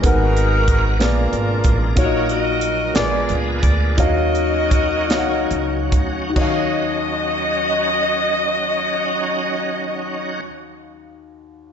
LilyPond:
<<
  \new Staff \with { instrumentName = "Saxophone section" } { \time 6/8 \key ees \minor \tempo 4. = 51 << { bes'4. bes'4. | des''8 ees''4 d''8 r8 d''8 | ees''2~ ees''8 r8 | ees''2.~ |
ees''2. | } \\ { <ees' ges'>4. <d' f'>4. | <ges' bes'>8 <ges' bes'>4 <f' aes'>4. | <ges' bes'>2~ <ges' bes'>8 r8 | r2. |
r2. | } >> }
  \new Staff \with { instrumentName = "Upright piano" } { \time 6/8 \key ees \minor <ces' aes' bes' ges''>4 r8 <ces' aes' bes' d''>4 r8 | <bes ees' ges' des'' ees''>4 r8 <ces' aes' bes' d''>4 r8 | <ees' ges' des'' f''>4 r8 <ees' ges' des'' f'' ges''>4 r8 | <ees' ges' des'' f''>2.~ |
<ees' ges' des'' f''>2. | }
  \new Staff \with { instrumentName = "Upright piano" } { \clef bass \time 6/8 \key ees \minor aes,4. bes4. | bes,4. bes,4. | ees4. r4. | ees,2.~ |
ees,2. | }
  \new Staff \with { instrumentName = "Tonewheel organ" } { \time 6/8 \key ees \minor <aes ces' ges' bes'>4. <ces aes d' bes'>4. | <ges bes ees' bes'>4. <aes ces' d' bes'>4. | <ges des' ees' f' ges'>2. | <ges des' ees' ges'>2.~ |
<ges des' ees' ges'>2. | }
  \new Staff \with { instrumentName = "Upright bass" } { \clef bass \time 6/8 \key ees \minor aes,,4. bes,,8 aes,,8 a,,8 | bes,,4. bes,,8 des,8 d,8 | ees,4. des,8 des,8 d,8 | ees,2.~ |
ees,2. | }
  \new DrumStaff \with { instrumentName = "Drums" } \drummode { \time 6/8 <hh bd>8 hh8 <hh bd>8 <hh sn>8 hh8 <hh bd>8 | <hh bd>8 hh8 hh8 <hh sn>8 hh8 <hh bd>8 | <hh bd>8 hh8 <hh bd>8 <hh sn>8 hh8 <hh bd>8 | <cymc bd>4. r4. |
r4. r4. | }
>>